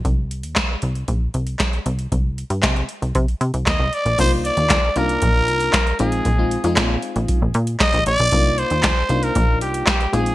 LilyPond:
<<
  \new Staff \with { instrumentName = "Trumpet" } { \time 4/4 \key c \minor \tempo 4 = 116 r1 | r2. ees''8 d''8 | c''8 d''4 bes'2 aes'8~ | aes'4 r2 ees''8 d''8~ |
d''8 c''4~ c''16 bes'8. g'8 g'8 aes'8 | }
  \new Staff \with { instrumentName = "FM electric piano" } { \time 4/4 \key c \minor r1 | r1 | <bes d' ees' f'>4 r8 <bes d' ees' f'>4. r8 <aes c' ees' f'>8 | r16 <aes c' ees' f'>16 r16 <aes c' ees' f'>4. r4. r16 |
<bes d' ees' f'>4 r8 <bes d' ees' f'>4. r8 <aes c' ees' f'>8 | }
  \new Staff \with { instrumentName = "Analog synth bass" } { \clef bass \time 4/4 \key c \minor c,8. ees,8 r16 c,8 bes,,8 c,8 r8 c,8 | c,8. g,16 c8 r16 c,16 c16 r16 c16 c,16 ees,16 c,16 r16 bes,,16 | c,8. ees,8 r16 c,8 bes,,8 c,8 r8 bes,,8 | bes,,8. f,16 bes,8 r16 bes,,16 r16 bes,,16 bes,8 r16 bes,,16 bes,,16 b,,16 |
c,8. ees,8 r16 c,8 bes,,8 c,8 r8 bes,,8 | }
  \new DrumStaff \with { instrumentName = "Drums" } \drummode { \time 4/4 <hh bd>8 hh16 hh16 <hc hh bd sn>8 hh16 hh16 <hh bd>8 hh16 hh16 <hc hh bd sn>16 hh16 hh16 hh16 | <hh bd>8 hh16 hh16 <hc hh bd sn>16 hh16 hh16 hh16 <hh bd>16 hh16 hh16 hh16 <hc hh bd sn>8 hh16 hh16 | <cymc hh bd>8 hh16 hh16 <hc hh bd sn>8 hh16 hh16 <hh bd>8 hh16 hh16 <hc hh bd sn>16 hh16 hh16 hh16 | <hh bd>8 hh16 hh16 <hc hh bd sn>8 hh16 hh16 <hh bd>8 hh16 hh16 <hc hh bd sn>16 hh16 hh16 hh16 |
<hh bd>8 hh16 hh16 <hc hh bd sn>8 hh16 hh16 <hh bd>8 hh16 hh16 <hc hh bd sn>16 hh16 hh16 hh16 | }
>>